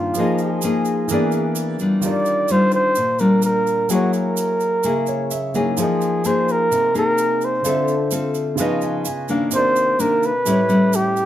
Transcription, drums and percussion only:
0.15 shaker
0.38 shaker
0.62 shaker
0.85 shaker
1.09 shaker
1.32 shaker
1.56 shaker
1.79 shaker
2.02 shaker
2.26 shaker
2.48 shaker
2.72 shaker
2.95 shaker
3.19 shaker
3.42 shaker
3.67 shaker
3.89 shaker
4.13 shaker
4.37 shaker
4.60 shaker
4.83 shaker
5.07 shaker
5.31 shaker
5.54 shaker
5.77 shaker
6.01 shaker
6.24 shaker
6.49 shaker
6.72 shaker
6.95 shaker
7.18 shaker
7.41 shaker
7.65 shaker
7.88 shaker
8.11 shaker
8.35 shaker
8.58 shaker
8.81 shaker
9.05 shaker
9.29 shaker
9.51 shaker
9.76 shaker
10.00 shaker
10.23 shaker
10.46 shaker
10.69 shaker
10.93 shaker
11.17 shaker

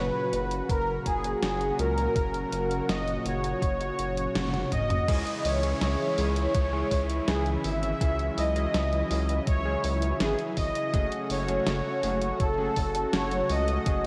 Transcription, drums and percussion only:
0.33 closed hi-hat
0.51 closed hi-hat
0.69 kick, closed hi-hat
1.06 kick, closed hi-hat
1.24 closed hi-hat
1.43 snare, closed hi-hat
1.61 closed hi-hat
1.79 closed hi-hat
1.98 closed hi-hat
2.16 kick, closed hi-hat
2.34 closed hi-hat
2.52 closed hi-hat
2.71 closed hi-hat
2.89 snare, closed hi-hat
3.08 closed hi-hat
3.26 closed hi-hat
3.44 closed hi-hat
3.62 kick, closed hi-hat
3.81 closed hi-hat
3.99 closed hi-hat
4.17 closed hi-hat
4.35 snare, closed hi-hat, high tom
4.54 closed hi-hat, high tom
4.72 kick, closed hi-hat, mid tom
4.90 closed hi-hat, mid tom
5.08 kick, closed hi-hat, crash
5.27 closed hi-hat
5.45 open hi-hat
5.63 closed hi-hat
5.81 snare, closed hi-hat
6.18 open hi-hat
6.36 closed hi-hat
6.55 kick, closed hi-hat
6.91 kick, open hi-hat
7.10 closed hi-hat
7.28 snare, closed hi-hat
7.46 closed hi-hat
7.64 open hi-hat
7.83 closed hi-hat
8.01 kick, closed hi-hat
8.19 closed hi-hat
8.38 open hi-hat
8.56 closed hi-hat
8.74 snare, closed hi-hat
8.93 closed hi-hat
9.11 open hi-hat
9.29 closed hi-hat
9.47 kick, closed hi-hat
9.84 open hi-hat
10.02 closed hi-hat
10.20 snare, closed hi-hat
10.39 closed hi-hat
10.57 kick, open hi-hat
10.75 closed hi-hat
10.94 kick, closed hi-hat
11.12 closed hi-hat
11.30 open hi-hat
11.48 closed hi-hat
11.67 snare, closed hi-hat
12.03 open hi-hat
12.22 closed hi-hat
12.40 kick, closed hi-hat
12.76 kick, open hi-hat
12.95 closed hi-hat
13.13 snare, closed hi-hat
13.31 closed hi-hat
13.50 open hi-hat
13.68 closed hi-hat
13.86 kick, closed hi-hat

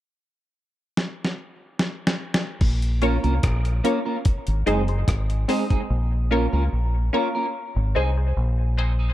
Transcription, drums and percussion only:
0.97 snare
1.25 snare
1.79 snare
2.07 snare
2.34 snare
2.61 kick, crash
2.82 closed hi-hat
3.02 closed hi-hat
3.24 closed hi-hat
3.43 kick, cross-stick, closed hi-hat
3.65 closed hi-hat
3.85 closed hi-hat
4.25 kick, closed hi-hat
4.47 closed hi-hat
4.67 closed hi-hat
4.88 closed hi-hat
5.08 kick, cross-stick, closed hi-hat
5.30 closed hi-hat
5.49 open hi-hat
5.70 kick, closed hi-hat

